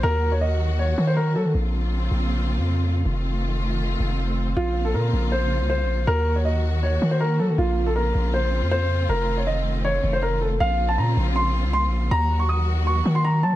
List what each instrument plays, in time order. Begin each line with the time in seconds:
Already playing: string section A#3
0.03 808-style bass D#2, string section D#3 F#3 F#4, grand piano A#4
0.32 grand piano C#5
0.41 grand piano D#5
0.79 grand piano C#5
0.98 808-style bass D#3
1.07 grand piano C5
1.17 grand piano A#4
1.36 808-style bass F#3, grand piano A4
1.45 808-style bass D#3
1.54 808-style bass A#1, string section C#3 A#3 C4 F4
2.11 808-style bass A#1
2.58 808-style bass F2
3.05 808-style bass F1, string section D#3 A3 C4 F4
4.00 808-style bass F1
4.56 808-style bass A#1, string section C#3 A#3 F4, grand piano F4
4.85 grand piano A4
4.94 808-style bass A#2, grand piano A#4
5.13 808-style bass A#1
5.32 grand piano C5
5.60 808-style bass C2
5.70 grand piano C5
5.84 808-style bass A#1
6.07 808-style bass D#2, string section D#3 F#3 A#3 F#4, grand piano A#4
6.36 grand piano C#5
6.45 grand piano D#5
6.83 grand piano C#5
7.02 808-style bass D#3
7.11 grand piano C5
7.20 grand piano A#4
7.39 808-style bass F#3, grand piano A4
7.49 808-style bass D#3
7.58 808-style bass A#1, string section C#3 C4 F4, grand piano F4
7.86 grand piano A4
7.96 grand piano A#4
8.15 808-style bass A#1
8.34 grand piano C5
8.62 808-style bass F2
8.71 grand piano C5
9.09 808-style bass F1, string section D#3 A3, grand piano A#4
9.37 grand piano C#5
9.47 grand piano D#5
9.85 grand piano C#5
10.04 808-style bass F1
10.13 grand piano C5
10.22 grand piano A#4
10.41 grand piano A4
10.60 808-style bass A#1, string section C#3 A#3 C4 F4, grand piano F5
10.89 grand piano A5
10.98 808-style bass A#2, grand piano A#5
11.17 808-style bass A#1
11.36 grand piano C6
11.64 808-style bass C2
11.73 grand piano C6
11.88 808-style bass A#1
12.11 808-style bass D#2, string section D#3 F#3 A#3 F#4, grand piano A#5
12.39 grand piano C#6
12.49 grand piano D#6
12.87 grand piano C#6
13.05 808-style bass D#3
13.15 grand piano C6
13.24 grand piano A#5
13.43 808-style bass F#3, grand piano A5
13.53 808-style bass D#3